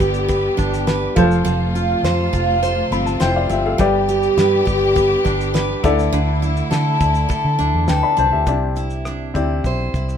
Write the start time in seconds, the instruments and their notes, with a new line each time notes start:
Already playing: steel-string acoustic guitar D3 G3 B4, string section D3 B3 G4, upright piano G4 B4 D5
0.00 fingered electric bass G1, steel-string acoustic guitar G4, kick, shaker
0.14 shaker
0.28 steel-string acoustic guitar B4, kick, shaker
0.57 fingered electric bass G1, steel-string acoustic guitar D4, kick, shaker
0.73 snare, shaker
0.87 steel-string acoustic guitar B4, snare, shaker
1.16 fingered electric bass F1, string section C3 A3 F4, steel-string acoustic guitar F3, upright piano F4 A4 C5, kick, shaker
1.31 shaker
1.45 fingered electric bass F1, steel-string acoustic guitar F3, shaker
1.75 steel-string acoustic guitar F4, shaker
2.03 fingered electric bass F2, steel-string acoustic guitar C5, snare, shaker
2.33 fingered electric bass F1, steel-string acoustic guitar F4, kick, shaker
2.63 steel-string acoustic guitar C5, shaker
2.91 fingered electric bass G1, steel-string acoustic guitar C4, upright piano B5, shaker
3.06 upright piano A5, snare, shaker
3.20 fingered electric bass F1, upright piano E4 C5 G5, steel-string acoustic guitar C5, snare, shaker
3.36 upright piano F4 D5 F5
3.49 fingered electric bass G1, steel-string acoustic guitar C4, upright piano G4 E5, shaker
3.66 upright piano A4 F5
3.78 fingered electric bass G1, string section D3 B3 G4, steel-string acoustic guitar G3, upright piano G4 B4 D5, kick, shaker
4.09 steel-string acoustic guitar G4, shaker
4.23 shaker
4.37 fingered electric bass G2, steel-string acoustic guitar B4, snare, shaker
4.65 fingered electric bass G1, steel-string acoustic guitar G4, kick, shaker
4.96 steel-string acoustic guitar B4, kick, shaker
5.25 fingered electric bass G1, steel-string acoustic guitar D4, kick, shaker
5.41 shaker
5.54 steel-string acoustic guitar B4, snare, shaker
5.83 fingered electric bass D2, string section D3 A3 E4, steel-string acoustic guitar D3, upright piano E4 A4 D5, kick, shaker
5.99 shaker
6.13 fingered electric bass D2, steel-string acoustic guitar D3, shaker
6.42 steel-string acoustic guitar E4, shaker
6.57 shaker
6.71 fingered electric bass D3, steel-string acoustic guitar A4, snare, shaker
7.00 fingered electric bass D2, steel-string acoustic guitar E4, kick, shaker
7.15 shaker
7.29 steel-string acoustic guitar A4, kick, shaker
7.45 fingered electric bass D3
7.59 fingered electric bass D2, steel-string acoustic guitar D4, shaker
7.75 fingered electric bass E2
7.88 fingered electric bass D2, steel-string acoustic guitar A4, upright piano B4 G5, snare, shaker
8.03 upright piano D5 B5
8.17 fingered electric bass C2, steel-string acoustic guitar D4, upright piano C5 A5, shaker
8.32 fingered electric bass D2, upright piano G4 E5
8.46 fingered electric bass C2, steel-string acoustic guitar C3, upright piano C4 E4 G4 D5, kick, shaker
8.76 steel-string acoustic guitar E4, shaker
8.90 shaker
9.05 steel-string acoustic guitar D4, cross-stick, shaker
9.34 fingered electric bass D2, upright piano C4 E4 G4 D5, steel-string acoustic guitar E4, kick, shaker
9.64 fingered electric bass B1, steel-string acoustic guitar C5, kick, shaker
9.94 fingered electric bass C2, steel-string acoustic guitar E4, kick, shaker
10.09 cross-stick, shaker